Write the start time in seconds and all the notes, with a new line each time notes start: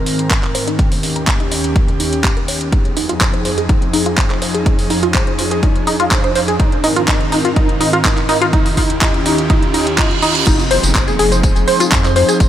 Already playing: G#2 D#3 C4 A#4, riser
0.06 open hi-hat
0.19 closed hi-hat
0.31 A#4, kick, clap, closed hi-hat
0.43 clap, closed hi-hat
0.55 C5, open hi-hat
0.67 D#4, closed hi-hat
0.79 D#2 C#4 G4 G5, kick, closed hi-hat
0.92 open hi-hat
1.03 open hi-hat
1.16 A#5, closed hi-hat
1.27 A#5, kick, clap, closed hi-hat
1.40 D#4, closed hi-hat
1.52 D#5, open hi-hat
1.64 closed hi-hat
1.76 kick, closed hi-hat
1.88 A#4, closed hi-hat
2.00 D#4, open hi-hat
2.13 closed hi-hat
2.24 G4, kick, clap, closed hi-hat
2.37 A#4, closed hi-hat
2.48 C#5, open hi-hat
2.61 closed hi-hat
2.72 F2 F3 D#4 G#4, kick, closed hi-hat
2.85 closed hi-hat
2.97 D#4, open hi-hat
3.09 F4, closed hi-hat
3.21 C5, kick, clap, closed hi-hat
3.34 C5, closed hi-hat
3.45 C5, open hi-hat
3.58 G#4, closed hi-hat
3.69 D#4, kick, closed hi-hat
3.82 closed hi-hat
3.93 D#4, open hi-hat
4.06 F4, closed hi-hat
4.18 C5, kick, clap, closed hi-hat
4.30 C5, clap, closed hi-hat
4.42 C5, open hi-hat
4.55 G#4, closed hi-hat
4.66 D#4, kick, closed hi-hat
4.79 open hi-hat
4.90 D#4, open hi-hat
5.03 F4, closed hi-hat
5.14 C5, kick, clap, closed hi-hat
5.27 C5, closed hi-hat
5.39 C5, open hi-hat
5.51 G#4, closed hi-hat
5.63 D#4, kick, closed hi-hat
5.76 closed hi-hat
5.87 D#4, open hi-hat
6.00 F4, closed hi-hat
6.11 C5, kick, clap, closed hi-hat
6.24 C5, closed hi-hat
6.35 C5, open hi-hat
6.48 G#4, closed hi-hat
6.60 G#2 D#3 C4 D#4 A#4, kick, closed hi-hat
6.72 closed hi-hat
6.84 D#4, open hi-hat
6.96 F4, closed hi-hat
7.08 D#4, kick, clap, closed hi-hat
7.21 closed hi-hat
7.32 D#4, open hi-hat
7.45 F4, closed hi-hat
7.56 D#4, kick, closed hi-hat
7.69 closed hi-hat
7.80 D#4, open hi-hat
7.93 F4, closed hi-hat
8.05 D#4, kick, clap, closed hi-hat
8.17 clap, closed hi-hat
8.29 D#4, open hi-hat
8.42 F4, closed hi-hat
8.53 D#2 C#4 D#4 G4, kick, closed hi-hat
8.66 open hi-hat
8.77 D#4, kick, open hi-hat
8.90 closed hi-hat
9.01 D#4, kick, clap, closed hi-hat
9.14 closed hi-hat
9.26 D#4, open hi-hat
9.38 closed hi-hat
9.50 D#4, kick, closed hi-hat, reverse cymbal
9.62 closed hi-hat
9.74 D#4, open hi-hat
9.87 closed hi-hat
9.98 D#4, kick, clap, closed hi-hat
10.11 closed hi-hat
10.22 D#4, open hi-hat
10.35 closed hi-hat
10.47 F1 F3 C4 D#4 G#4 C5, kick, closed hi-hat, crash, tambourine, downlifter
10.59 closed hi-hat, tambourine
10.71 C5, open hi-hat
10.83 F1, closed hi-hat, tambourine
10.95 C5, kick, clap, closed hi-hat, tambourine
11.08 G#4, closed hi-hat, tambourine
11.19 F1 G#4, open hi-hat
11.32 C5, closed hi-hat, tambourine
11.43 kick, closed hi-hat, tambourine
11.56 F1, closed hi-hat, tambourine
11.68 C5, open hi-hat
11.80 F4, closed hi-hat, tambourine
11.92 F2, kick, clap, closed hi-hat, tambourine
12.04 D#4, clap, closed hi-hat, tambourine
12.16 C5, open hi-hat
12.29 G#4, closed hi-hat, tambourine
12.40 F1, kick, closed hi-hat, tambourine